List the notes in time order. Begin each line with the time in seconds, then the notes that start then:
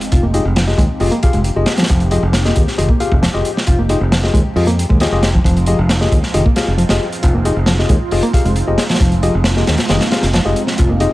Already playing: F3 G#3 C4 D#4 G4, impact
0.01 closed hi-hat
0.12 F1 F4, kick, closed hi-hat
0.23 A#3
0.34 D#4 F4 G4 G#4 D#5, closed hi-hat
0.45 F1
0.56 F3, snare, closed hi-hat
0.67 F4 G4 G#4 D#5, snare
0.78 D#2 G#3, kick, closed hi-hat
1.00 F1 F4 G4 G#4 D#5, open hi-hat
1.12 A#3, closed hi-hat
1.23 F4 G4 G#4 F5, kick, closed hi-hat
1.33 F1 G#3, closed hi-hat
1.44 closed hi-hat
1.56 F1 F4 G4 G#4 D#5
1.66 snare, closed hi-hat
1.77 F3, snare, closed hi-hat
1.83 snare, closed hi-hat
1.88 F1 F3, kick, closed hi-hat
2.00 closed hi-hat
2.11 F4 G4 G#4 D#5, closed hi-hat
2.23 F1
2.33 snare, closed hi-hat
2.45 A#3 F4 G4 G#4 D#5, snare
2.56 D#2, kick, closed hi-hat
2.67 snare
2.78 F1 D#3 F4 G4 G#4 D#5, closed hi-hat
2.89 A#3, kick
3.00 F4 G4 G#4 F5, closed hi-hat
3.12 F1, kick
3.22 F3, snare, closed hi-hat
3.34 F1 F4 G4 G#4 D#5
3.45 closed hi-hat
3.57 snare
3.67 F1 F4, kick, closed hi-hat
3.79 A#3
3.89 D#4 F4 G4 G#4 D#5, closed hi-hat
4.01 F1
4.12 F3, snare, closed hi-hat
4.23 F4 G4 G#4 D#5, snare
4.34 D#2 G#3, kick, closed hi-hat
4.56 F2 F4 G4 G#4 D#5, open hi-hat
4.67 A#3, closed hi-hat
4.79 closed hi-hat
4.90 D#2 G#3, kick
5.00 F4 G4 G#4 D#5, snare, closed hi-hat
5.12 F1 F4 G4 G#4 D#5
5.23 snare, closed hi-hat
5.34 F3, kick
5.44 F1 F3 F4, kick, closed hi-hat
5.57 closed hi-hat
5.66 F4 G4 G#4 D#5, closed hi-hat
5.79 F1
5.89 snare, closed hi-hat
6.01 A#3 F4 G4 G#4 D#5, snare
6.12 D#2, kick, closed hi-hat
6.23 snare
6.34 F1 D#3 F4 G4 G#4 D#5, closed hi-hat
6.45 A#3, kick
6.56 F4 G4 G#4 F5, snare, closed hi-hat
6.68 F1
6.78 F3, closed hi-hat
6.89 F1 F4 G4 G#4 D#5, snare, closed hi-hat
7.12 closed hi-hat
7.23 F1 F4, kick, closed hi-hat
7.34 A#3
7.45 D#4 F4 G4 G#4 D#5, closed hi-hat
7.56 F1
7.66 F3, snare, closed hi-hat
7.79 F4 G4 G#4 D#5, snare
7.89 D#2 G#3, kick, closed hi-hat
8.11 F1 F4 G4 G#4 D#5, open hi-hat
8.23 A#3, closed hi-hat
8.33 F4 G4 G#4 F5, kick, closed hi-hat
8.45 F1 G#3, closed hi-hat
8.56 closed hi-hat
8.67 F1 F4 G4 G#4 D#5
8.78 snare, closed hi-hat
8.89 F3, snare, closed hi-hat
8.95 snare, closed hi-hat
9.00 F1 F3, kick, closed hi-hat
9.12 closed hi-hat
9.23 F4 G4 G#4 D#5, closed hi-hat
9.35 F1
9.44 snare, closed hi-hat
9.56 A#3 F4 G4 G#4 D#5, snare
9.67 D#2, snare, closed hi-hat
9.78 snare, closed hi-hat
9.89 F1 D#3 F4 G4 G#4 D#5, snare, closed hi-hat
10.01 A#3, snare, closed hi-hat
10.11 F4 G4 G#4 F5, snare, closed hi-hat
10.22 F1, snare, closed hi-hat
10.33 F3, snare, closed hi-hat
10.45 F1 F4 G4 G#4 D#5
10.56 closed hi-hat
10.67 snare
10.78 F1 F4, kick, closed hi-hat
10.89 A#3
11.00 D#4 F4 G4 G#4 D#5, closed hi-hat